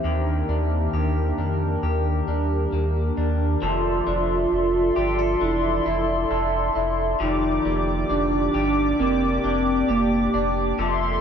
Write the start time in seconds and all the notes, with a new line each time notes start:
Already playing: A#3 E4 G4
0.03 D#2 D#3 D4 G4 A#4
0.49 D#2 D4
0.93 D#2 G4
1.38 F2 D4
1.83 D#2 G4
2.28 D#2 D4 G4
2.72 D#2 A#3
3.17 D#2 D4
3.62 F1 F3 F4 A4 D5 E5 C6
4.07 F1 D4
4.52 F1
4.96 G1 G4
5.19 A4
5.41 F1 D4 E4
5.86 F1 E4
6.31 F1 A4
6.75 F1 E4
7.20 F1 F3 D#4 G4 D5 D6
7.65 F1 A#3
8.10 F1 D4
8.54 G1 G4
8.99 F1 A#3 C4
9.44 F1 C4 D4
9.89 F1 A#3 G4
10.34 F1 D4
10.78 F1 F3 A4 E5 C6